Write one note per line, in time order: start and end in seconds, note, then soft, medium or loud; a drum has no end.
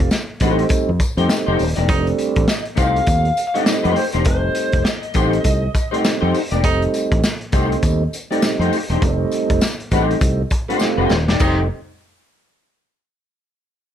0.00 0.10 F4 loud
0.00 kick medium
0.11 snare loud
0.11 tambourine medium
0.40 0.63 A1 loud
0.40 0.91 G3 medium
0.40 0.63 A3 medium
0.40 0.91 A3 medium
0.40 0.91 C4 medium
0.40 0.63 D#4 medium
0.40 0.91 D#4 medium
0.40 0.63 G4 loud
0.40 0.63 C5 medium
0.40 kick medium
0.40 closed hi-hat medium
0.40 tambourine medium
0.59 closed hi-hat soft
0.69 kick loud
0.69 closed hi-hat medium
0.69 tambourine medium
0.89 0.97 F2 medium
1.00 kick medium
1.00 closed hi-hat medium
1.00 tambourine medium
1.17 1.26 F2 loud
1.17 1.63 G3 medium
1.17 1.64 A3 medium
1.17 1.35 A3 medium
1.17 1.64 C4 medium
1.17 1.64 D#4 loud
1.17 1.35 D#4 medium
1.17 1.34 G4 medium
1.17 1.34 C5 medium
1.17 closed hi-hat soft
1.29 snare loud
1.29 tambourine loud
1.46 1.57 F1 loud
1.46 1.64 A3 medium
1.46 1.64 D#4 medium
1.46 1.64 G4 medium
1.46 1.63 C5 medium
1.59 1.73 D#1 medium
1.59 open hi-hat medium
1.59 tambourine soft
1.76 1.89 E1 medium
1.76 1.89 A3 medium
1.76 1.88 D#4 medium
1.76 1.89 G4 medium
1.76 1.88 D5 medium
1.76 closed hi-hat medium
1.89 2.11 F1 loud
1.89 2.47 G3 loud
1.89 2.47 A3 medium
1.89 2.47 C4 medium
1.89 2.47 D4 medium
1.89 2.08 D#4 medium
1.89 kick loud
1.89 closed hi-hat medium
2.07 closed hi-hat soft
2.19 closed hi-hat medium
2.19 tambourine medium
2.36 2.45 A1 medium
2.36 kick medium
2.36 closed hi-hat medium
2.48 2.57 D#5 loud
2.48 snare loud
2.48 tambourine medium
2.66 closed hi-hat soft
2.75 3.00 C2 medium
2.75 3.28 G3 medium
2.75 2.97 A3 medium
2.75 3.28 A3 medium
2.75 3.28 C4 medium
2.75 2.98 D#4 loud
2.75 2.86 D#4 medium
2.75 2.98 G4 medium
2.75 2.98 C5 medium
2.75 3.43 F5 loud
2.75 kick medium
2.75 closed hi-hat medium
2.75 tambourine medium
2.85 3.32 F4 medium
2.96 closed hi-hat soft
3.07 3.29 D#2 loud
3.07 kick loud
3.07 closed hi-hat medium
3.07 tambourine medium
3.25 closed hi-hat soft
3.37 closed hi-hat medium
3.37 tambourine medium
3.48 3.56 F5 medium
3.54 4.01 G3 medium
3.54 4.01 A3 medium
3.54 3.74 A3 medium
3.54 4.01 C4 medium
3.54 4.01 D#4 medium
3.54 3.73 D#4 medium
3.54 3.73 G4 medium
3.54 3.73 D5 medium
3.54 3.94 D#5 medium
3.54 closed hi-hat medium
3.66 snare loud
3.66 tambourine loud
3.83 3.94 F2 loud
3.83 4.03 A3 medium
3.83 4.03 D#4 medium
3.83 4.02 G4 medium
3.83 4.02 C5 loud
3.83 closed hi-hat soft
3.96 4.05 C5 medium
3.96 open hi-hat medium
4.12 4.26 E1 medium
4.12 4.26 A3 soft
4.12 4.26 D#4 medium
4.12 4.25 G4 medium
4.12 4.25 C5 medium
4.12 closed hi-hat medium
4.25 4.48 F1 loud
4.25 4.84 G3 medium
4.25 4.84 A3 medium
4.25 4.84 C4 medium
4.25 4.84 D#4 medium
4.25 4.85 C5 medium
4.25 kick loud
4.25 closed hi-hat medium
4.55 closed hi-hat medium
4.55 tambourine medium
4.72 4.82 F1 medium
4.72 kick medium
4.72 closed hi-hat medium
4.85 6.01 D#5 medium
4.85 snare loud
4.85 tambourine loud
5.03 closed hi-hat soft
5.14 5.38 A1 medium
5.14 5.66 G3 medium
5.14 5.35 A3 loud
5.14 5.66 A3 medium
5.14 5.66 C4 medium
5.14 5.36 D#4 loud
5.14 5.66 D#4 medium
5.14 5.36 G4 loud
5.14 5.36 C5 loud
5.14 kick medium
5.14 closed hi-hat medium
5.14 tambourine soft
5.33 closed hi-hat soft
5.44 5.67 C2 loud
5.44 kick medium
5.44 closed hi-hat loud
5.44 tambourine medium
5.75 kick medium
5.75 closed hi-hat medium
5.75 tambourine medium
5.91 6.39 G3 medium
5.91 6.39 A3 medium
5.91 6.09 A3 medium
5.91 6.39 C4 medium
5.91 5.98 D4 medium
5.91 6.09 D#4 medium
5.91 6.09 G4 medium
5.91 6.08 C5 medium
5.91 closed hi-hat soft
6.00 6.42 D#4 loud
6.04 snare loud
6.04 tambourine medium
6.21 6.31 F2 loud
6.21 6.39 A3 medium
6.21 6.39 D#4 medium
6.21 6.38 G4 medium
6.21 6.38 C5 medium
6.35 open hi-hat medium
6.35 tambourine soft
6.51 6.64 E1 medium
6.51 6.64 A3 medium
6.51 6.64 D#4 medium
6.51 6.64 G4 medium
6.51 6.63 D5 medium
6.51 closed hi-hat medium
6.64 6.86 F1 loud
6.64 7.22 G3 loud
6.64 7.22 A3 medium
6.64 7.22 C4 medium
6.64 6.83 D#4 loud
6.64 7.23 D#4 medium
6.64 kick loud
6.64 closed hi-hat medium
6.64 tambourine soft
6.82 closed hi-hat soft
6.94 closed hi-hat medium
6.94 tambourine medium
7.12 7.21 A1 medium
7.12 kick loud
7.12 closed hi-hat medium
7.24 snare loud
7.24 tambourine loud
7.41 closed hi-hat soft
7.52 7.75 C2 medium
7.52 8.04 G3 medium
7.52 7.74 A3 medium
7.52 8.04 A3 medium
7.52 8.04 C4 medium
7.52 7.74 D#4 medium
7.52 8.04 D#4 medium
7.52 7.74 G4 loud
7.52 7.75 C5 medium
7.52 kick loud
7.52 closed hi-hat medium
7.52 tambourine soft
7.72 closed hi-hat soft
7.83 8.05 D#2 medium
7.83 kick loud
7.83 closed hi-hat medium
7.83 tambourine medium
8.13 closed hi-hat medium
8.13 tambourine medium
8.31 8.77 G3 medium
8.31 8.77 A3 medium
8.31 8.48 A3 medium
8.31 8.77 C4 medium
8.31 8.48 D#4 medium
8.31 8.77 D#4 loud
8.31 8.47 G4 medium
8.31 8.47 D5 medium
8.31 closed hi-hat soft
8.42 snare loud
8.42 tambourine loud
8.59 8.69 F2 loud
8.59 8.77 A3 medium
8.59 8.77 D#4 medium
8.59 8.77 G4 medium
8.59 8.77 C5 loud
8.59 closed hi-hat soft
8.73 open hi-hat medium
8.73 tambourine soft
8.90 8.99 E1 loud
8.90 9.03 A3 medium
8.90 9.02 D#4 medium
8.90 9.02 G4 medium
8.90 9.02 C5 medium
8.90 closed hi-hat medium
9.02 9.24 F1 loud
9.02 9.61 G3 medium
9.02 9.61 A3 medium
9.02 9.61 C4 medium
9.02 9.10 D4 medium
9.02 kick loud
9.02 closed hi-hat medium
9.02 tambourine soft
9.09 9.64 D#4 loud
9.31 closed hi-hat medium
9.31 tambourine medium
9.50 9.59 F1 medium
9.50 kick medium
9.50 closed hi-hat medium
9.61 snare loud
9.61 tambourine loud
9.80 closed hi-hat soft
9.91 10.14 A1 medium
9.91 10.42 G3 medium
9.91 10.14 A3 medium
9.91 10.42 A3 medium
9.91 10.42 C4 medium
9.91 10.42 D#4 loud
9.91 10.14 D#4 medium
9.91 10.14 G4 loud
9.91 10.14 C5 medium
9.91 kick medium
9.91 closed hi-hat medium
9.91 tambourine soft
10.11 closed hi-hat soft
10.21 10.43 C2 loud
10.21 kick loud
10.21 closed hi-hat medium
10.21 tambourine medium
10.50 kick medium
10.50 closed hi-hat medium
10.50 tambourine medium
10.68 11.15 G3 medium
10.68 11.15 A3 medium
10.68 10.88 A3 medium
10.68 11.15 C4 medium
10.68 10.88 D#4 medium
10.68 11.15 F4 medium
10.68 10.87 G4 medium
10.68 10.87 C5 medium
10.68 closed hi-hat soft
10.79 snare medium
10.79 tambourine loud
10.97 11.07 F1 medium
10.97 11.17 A3 medium
10.97 11.17 D#4 medium
10.97 11.17 G4 medium
10.97 11.16 C5 medium
11.09 11.28 D#1 loud
11.09 snare medium
11.09 tambourine soft
11.28 11.37 E1 medium
11.28 11.39 A3 medium
11.28 11.40 D#4 medium
11.28 11.40 G4 medium
11.28 11.40 D5 medium
11.28 snare medium
11.40 11.68 F1 loud
11.40 11.68 G3 medium
11.40 11.61 A3 medium
11.40 11.68 A3 medium
11.40 11.68 C4 medium
11.40 11.68 D#4 medium
11.40 11.61 D#4 medium
11.40 11.62 D#4 medium
11.40 11.61 G4 medium
11.40 11.61 C5 medium
11.40 kick loud
11.40 crash medium
11.40 tambourine medium